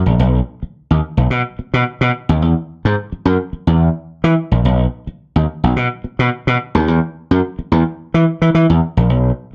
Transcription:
0.06 slap bass A#1
0.19 slap bass B1
0.63 muted slap bass stroke
0.91 slap bass D#2
1.17 slap bass B1
1.30 slap bass B2
1.59 muted slap bass stroke
1.74 slap bass B2
2.01 slap bass B2
2.29 slap bass D#2
2.42 slap bass E2
2.85 slap bass G#2
3.12 muted slap bass stroke
3.25 slap bass F#2
3.53 muted slap bass stroke
3.67 slap bass E2
4.24 slap bass E3
4.51 slap bass A#1
4.65 slap bass B1
5.07 muted slap bass stroke
5.36 slap bass D#2
5.64 slap bass B1
5.76 slap bass B2
6.04 muted slap bass stroke
6.19 slap bass B2
6.47 slap bass B2
6.75 slap bass D#2
6.88 slap bass E2
7.31 slap bass F#2
7.59 muted slap bass stroke
7.72 slap bass E2
8.14 slap bass E3
8.42 slap bass E3
8.55 slap bass E3
8.70 slap bass E2
8.97 slap bass A#1
9.10 slap bass B1

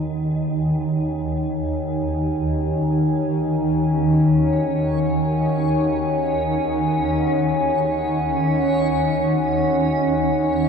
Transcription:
Already playing: synth drone D#2 D#3, analog synth pad D#4 C#5 F#5 G#5
3.40 synth texture C#4 C#5

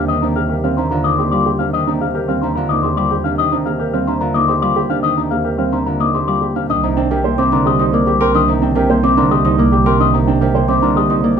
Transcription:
Already playing: double bass section D#2, harp C3 D3 G3 A#3, grand piano D4
0.08 harp D#3, clean electric guitar D#5
0.22 harp C3, grand piano D4, clean electric guitar A#4
0.36 grand piano G4, celesta F5, clean electric guitar F5
0.49 clean electric guitar G4, grand piano A#4
0.64 harp G3, grand piano C4, clean electric guitar F5
0.77 harp C3, grand piano D4, clean electric guitar C5, celesta A#5
0.91 harp D3, grand piano F4, clean electric guitar A#4
1.04 harp A#3, grand piano D#4, clean electric guitar D#5, celesta D6
1.18 harp C3, grand piano G4, clean electric guitar C5
1.32 harp G3, grand piano F4, clean electric guitar D5, celesta C6
1.45 clean electric guitar G4, grand piano G4
1.59 harp C3, grand piano D4, clean electric guitar F5
1.73 harp D#3, clean electric guitar D#5
1.87 harp C3, grand piano D4, clean electric guitar A#4
2.01 grand piano G4, clean electric guitar F5, celesta F5
2.15 clean electric guitar G4, grand piano A#4
2.28 harp G3, grand piano C4, clean electric guitar F5
2.42 harp C3, grand piano D4, clean electric guitar C5, celesta A#5
2.55 harp D3, grand piano F4, clean electric guitar A#4
2.69 harp A#3, grand piano D#4, clean electric guitar D#5, celesta D6
2.83 harp C3, grand piano G4, clean electric guitar C5
2.97 harp G3, grand piano F4, clean electric guitar D5, celesta C6
3.11 clean electric guitar G4, grand piano G4
3.24 harp C3, grand piano D4, clean electric guitar F5
3.38 harp D#3, grand piano D#4, clean electric guitar D#5
3.52 harp C3, grand piano D4, clean electric guitar A#4
3.66 harp A#3, grand piano G4, clean electric guitar F5, celesta F5
3.79 clean electric guitar G4, grand piano A#4
3.93 harp G3, grand piano C4, clean electric guitar F5
4.07 harp C3, grand piano D4, clean electric guitar C5, celesta A#5
4.21 harp D3, grand piano F4, clean electric guitar A#4
4.34 harp A#3, grand piano D#4, clean electric guitar D#5, celesta D6
4.48 harp C3, grand piano G4, clean electric guitar C5
4.62 harp G3, grand piano F4, clean electric guitar D5, celesta C6
4.76 clean electric guitar G4, grand piano G4
4.90 harp C3, grand piano D4, clean electric guitar F5
5.03 harp D#3, grand piano D#4, clean electric guitar D#5
5.17 harp C3, grand piano D4, clean electric guitar A#4
5.31 harp A#3, grand piano G4, clean electric guitar F5, celesta F5
5.45 clean electric guitar G4, grand piano A#4
5.58 harp G3, grand piano C4, clean electric guitar F5
5.72 harp C3, grand piano D4, clean electric guitar C5, celesta A#5
5.86 harp D3, grand piano F4, clean electric guitar A#4
6.00 harp A#3, grand piano D#4, clean electric guitar D#5, celesta D6
6.14 harp C3, grand piano G4, clean electric guitar C5
6.28 harp G3, grand piano F4, clean electric guitar D5, celesta C6
6.41 grand piano G4, clean electric guitar G4
6.56 harp C3, grand piano D4, clean electric guitar F5
6.69 double bass section C2, harp D#3, grand piano D4, clean electric guitar D#5
6.83 harp C3, grand piano D#4, clean electric guitar A#4
6.97 harp C4, grand piano D4, clean electric guitar G5
7.11 harp C3, clean electric guitar G4, grand piano A#4, celesta G5
7.24 harp A#3, grand piano C5, clean electric guitar G5
7.38 harp C3, grand piano C4, clean electric guitar C5, celesta D6
7.52 harp D3, grand piano D4, clean electric guitar A#4, celesta C6
7.66 harp C4, grand piano G4, clean electric guitar D#5
7.79 harp C3, grand piano D#4, clean electric guitar C5, celesta D#6
7.93 harp A#3, grand piano A#4, clean electric guitar D5
8.07 harp G3, grand piano G4, clean electric guitar G4, celesta D6
8.21 harp C3, grand piano A#4, clean electric guitar G5, celesta C6
8.34 harp D#3, grand piano D4, clean electric guitar D#5
8.48 harp C3, grand piano D#4, clean electric guitar A#4
8.62 harp C4, grand piano D4, clean electric guitar G5
8.75 harp C3, clean electric guitar G4, grand piano A#4, celesta G5
8.89 harp A#3, grand piano C5, clean electric guitar G5
9.03 harp C3, grand piano C4, clean electric guitar C5, celesta D6
9.17 harp D3, grand piano D4, clean electric guitar A#4, celesta C6
9.31 harp C4, grand piano G4, clean electric guitar D#5
9.45 harp C3, grand piano D#4, clean electric guitar C5, celesta D#6
9.58 harp A#3, grand piano A#4, clean electric guitar D5
9.72 harp G3, grand piano G4, clean electric guitar G4, celesta D6
9.86 harp C3, grand piano A#4, clean electric guitar G5, celesta C6
10.00 harp D#3, grand piano D4, clean electric guitar D#5
10.14 harp C3, grand piano D#4, clean electric guitar A#4
10.27 harp C4, grand piano D4, clean electric guitar G5
10.41 harp C3, clean electric guitar G4, grand piano A#4, celesta G5
10.55 harp A#3, grand piano C5, clean electric guitar G5
10.68 harp C3, grand piano C4, clean electric guitar C5, celesta D6
10.82 harp D3, grand piano D4, clean electric guitar A#4, celesta C6
10.96 harp C4, grand piano G4, clean electric guitar D#5
11.10 harp C3, grand piano D#4, clean electric guitar C5, celesta D#6
11.24 harp A#3, grand piano A#4, clean electric guitar D5
11.37 clean electric guitar G4

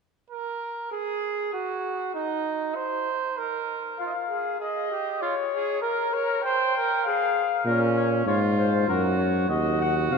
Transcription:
0.30 trumpet A#4
0.92 trumpet G#4
1.53 trumpet F#4
2.14 trumpet D#4
2.75 trumpet C5
3.38 trumpet A#4
3.98 trumpet F4, cornet F5
4.05 cornet D#5
4.12 cornet F5
4.30 trumpet G#4
4.60 trumpet G#4, cornet D#5
4.92 trumpet G4
5.21 trumpet F4, cornet C#5
5.54 trumpet G#4
5.82 cornet A#4, trumpet A#4
6.14 trumpet C#5
6.42 trumpet C5, cornet G5
6.77 trumpet A#4
7.03 trumpet G#4, cornet F5
7.65 bass trombone A#2, trumpet C#4, cornet A#4
7.96 cornet C#5
8.26 bass trombone G#2, trumpet F4, cornet C#5
8.57 cornet C5
8.88 bass trombone F#2, trumpet F#4, cornet A#4
9.18 cornet C#5
9.49 bass trombone D#2, trumpet F#4, cornet D#5
9.81 cornet F#5
10.10 bass trombone C3, cornet F5

